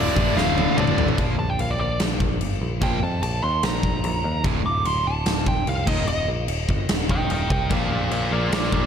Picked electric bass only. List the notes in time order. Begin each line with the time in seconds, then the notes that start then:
Already playing: D1
0.17 A1
0.36 D1
0.78 D1
0.98 A1
1.18 A#1
1.38 A#1
1.59 A#1
1.79 A#1
2.00 A#1
2.21 A#1
2.41 G1
2.61 A#1
2.82 A#1
3.03 F2
3.23 A#1
3.43 D#2
3.63 A#1
3.84 A#1
4.04 A#1
4.24 D#2
4.45 D1
4.64 D1
4.85 D1
5.05 D1
5.26 D1
5.47 D1
5.68 C2
5.87 D#1
6.08 D#1
6.28 A#1
6.48 D#1
6.69 G1
6.89 D#1
7.10 D#1
7.30 D#1
7.50 C2
7.71 A#1
7.91 A#1
8.11 A#1
8.31 A#1
8.52 A#1
8.73 A#1